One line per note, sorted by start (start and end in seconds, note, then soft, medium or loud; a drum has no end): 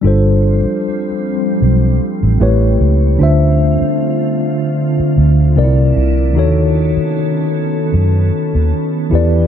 0.01 0.61 G1 loud
0.01 2.39 F3 medium
0.01 2.36 G3 medium
0.01 3.17 G3 medium
0.01 2.39 C4 medium
0.01 2.36 D4 medium
0.01 2.37 F4 medium
0.06 2.38 A4 medium
0.06 2.39 C5 medium
0.65 muted fingered electric bass stroke soft
1.62 1.98 B1 medium
2.23 2.39 A1 medium
2.40 2.77 A1 loud
2.40 3.20 A3 medium
2.40 5.54 A3 medium
2.40 3.19 C#4 medium
2.40 3.20 E4 medium
2.40 3.20 G4 medium
2.40 3.21 B4 medium
2.40 3.21 C#5 medium
2.81 3.16 C#2 medium
3.18 3.77 D2 medium
3.18 5.52 D3 medium
3.18 5.55 D3 medium
3.18 5.55 C4 medium
3.18 5.52 D4 medium
3.18 5.55 F4 medium
3.18 5.53 F4 medium
3.22 5.54 C5 medium
3.22 5.54 E5 medium
3.81 muted fingered electric bass stroke soft
5.00 muted fingered electric bass stroke soft
5.18 5.53 D2 medium
5.56 5.93 C2 medium
5.56 6.35 C3 medium
5.56 6.35 A#3 medium
5.56 6.36 C4 medium
5.56 6.35 D4 medium
5.56 5.64 D#4 soft
5.56 6.35 E4 medium
5.56 6.36 A#4 medium
5.56 6.37 D5 medium
5.64 6.39 E4 medium
5.96 6.36 C2 medium
6.34 6.93 D#2 loud
6.34 9.07 D#3 medium
6.34 9.10 D#3 medium
6.34 9.47 B3 medium
6.34 9.10 C#4 medium
6.34 9.08 D#4 medium
6.34 9.08 F#4 medium
6.34 9.10 A4 medium
6.38 9.09 A4 medium
6.38 9.10 C#5 medium
6.97 muted fingered electric bass stroke soft
7.94 8.30 F#2 loud
8.55 8.71 D#2 medium
9.10 9.47 E2 medium
9.10 9.47 E3 medium
9.10 9.47 D4 medium
9.10 9.47 E4 medium
9.10 9.47 G4 medium
9.14 9.47 B4 medium
9.14 9.47 D5 medium